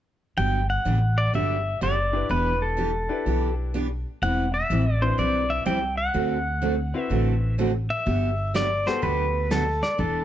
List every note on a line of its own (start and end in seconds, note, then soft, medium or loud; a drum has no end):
0.37 0.76 G1 medium
0.37 0.59 D3 medium
0.37 0.60 F#3 medium
0.37 0.60 B3 medium
0.37 0.60 D4 medium
0.37 0.60 G4 medium
0.37 0.69 G5 loud
0.70 1.19 F#5 medium
0.85 1.26 A1 medium
0.85 0.97 D3 medium
0.85 0.97 F#3 medium
0.85 0.97 B3 medium
0.85 0.98 D4 medium
0.85 0.98 G4 medium
1.18 1.33 D5 medium
1.33 1.74 G1 medium
1.33 1.56 D3 medium
1.33 1.56 F#3 medium
1.33 1.56 B3 medium
1.33 1.56 D4 medium
1.33 1.56 G4 medium
1.33 1.83 E5 loud
1.81 2.23 F#1 medium
1.81 1.93 D3 medium
1.81 1.93 F#3 medium
1.81 1.94 B3 medium
1.81 1.94 D4 medium
1.81 1.94 G4 medium
1.81 2.32 D5 medium
2.13 2.74 D4 medium
2.13 2.74 E4 medium
2.13 2.75 G4 medium
2.13 2.75 B4 medium
2.29 3.07 E1 medium
2.29 2.52 E3 medium
2.29 2.52 B3 medium
2.29 2.52 D4 medium
2.29 2.52 G4 medium
2.29 2.63 B4 medium
2.62 3.54 A4 medium
2.77 2.89 E3 medium
2.77 2.90 B3 medium
2.77 2.90 D4 medium
2.77 2.90 G4 medium
3.09 3.71 D4 medium
3.09 3.71 E4 medium
3.09 3.71 G4 medium
3.09 3.71 B4 medium
3.26 4.03 B1 medium
3.26 3.48 E3 medium
3.26 3.48 B3 medium
3.26 3.49 D4 medium
3.26 3.49 G4 medium
3.74 3.86 E3 medium
3.74 3.86 B3 medium
3.74 3.86 D4 medium
3.74 3.87 G4 medium
4.22 4.61 E1 medium
4.22 4.44 E3 medium
4.22 4.45 G3 medium
4.22 4.45 C4 medium
4.22 4.45 E4 medium
4.22 4.45 B4 medium
4.22 4.52 F#5 medium
4.54 5.03 E5 medium
4.70 5.11 A1 medium
4.70 4.82 E3 medium
4.70 4.82 G3 medium
4.70 4.82 C4 medium
4.70 4.83 E4 medium
4.70 4.83 B4 medium
5.02 5.63 C4 medium
5.02 5.63 D4 medium
5.02 5.63 E4 medium
5.02 5.63 B4 medium
5.02 5.19 C5 medium
5.18 5.59 B1 medium
5.18 5.40 E3 medium
5.18 5.40 G3 medium
5.18 5.41 C4 medium
5.18 5.41 E4 medium
5.18 5.41 B4 medium
5.18 5.51 D5 medium
5.50 5.65 E5 medium
5.65 6.07 C2 medium
5.65 5.78 E3 medium
5.65 5.78 G3 medium
5.65 5.78 C4 medium
5.65 5.78 E4 medium
5.65 5.78 B4 medium
5.65 5.97 G5 medium
5.97 7.01 F#5 medium
6.14 6.91 D2 medium
6.14 6.36 D3 medium
6.14 6.37 A3 medium
6.14 6.37 C4 medium
6.14 6.37 F#4 medium
6.14 6.37 A4 medium
6.62 6.74 D3 medium
6.62 6.74 A3 medium
6.62 6.74 C4 medium
6.62 6.74 F#4 medium
6.62 6.74 A4 medium
6.94 7.55 C4 medium
6.94 7.55 E4 medium
6.94 7.56 F#4 medium
6.94 7.56 B4 medium
7.01 7.55 E5 medium
7.10 7.87 A1 medium
7.10 7.33 D3 medium
7.10 7.33 A3 medium
7.10 7.33 C4 medium
7.10 7.33 F#4 medium
7.10 7.33 A4 medium
7.58 7.70 D3 medium
7.58 7.70 A3 medium
7.58 7.71 C4 medium
7.58 7.71 F#4 medium
7.58 7.71 A4 medium
7.90 8.57 E5 medium
8.06 8.84 G1 medium
8.06 8.29 D3 medium
8.06 8.29 F#3 medium
8.06 8.29 B3 medium
8.06 8.29 D4 medium
8.06 8.29 G4 medium
8.06 brush sweep soft
8.06 kick soft
8.54 8.66 D3 medium
8.54 8.66 F#3 medium
8.54 8.67 B3 medium
8.54 8.67 D4 medium
8.54 8.67 G4 medium
8.54 8.88 D5 medium
8.54 snare medium
8.54 hi-hat pedal soft
8.86 9.48 B3 medium
8.86 9.48 F#4 medium
8.86 9.48 G4 medium
8.86 9.48 A4 medium
8.86 9.04 C5 medium
8.86 snare soft
9.02 9.80 D2 medium
9.02 9.25 D3 medium
9.02 9.25 F#3 medium
9.02 9.25 B3 medium
9.02 9.25 D4 medium
9.02 9.25 G4 medium
9.02 9.53 B4 medium
9.02 brush sweep soft
9.02 kick soft
9.50 9.63 D3 medium
9.50 9.63 F#3 medium
9.50 9.63 B3 medium
9.50 9.63 D4 medium
9.50 9.63 G4 medium
9.50 9.84 A4 medium
9.50 snare medium
9.50 hi-hat pedal medium
9.82 10.00 D5 medium
9.82 snare soft
9.98 10.24 E1 medium
9.98 10.21 E3 medium
9.98 10.21 B3 medium
9.98 10.21 D4 medium
9.98 10.21 G4 medium
9.98 10.24 A4 medium
9.98 brush sweep soft
9.98 kick soft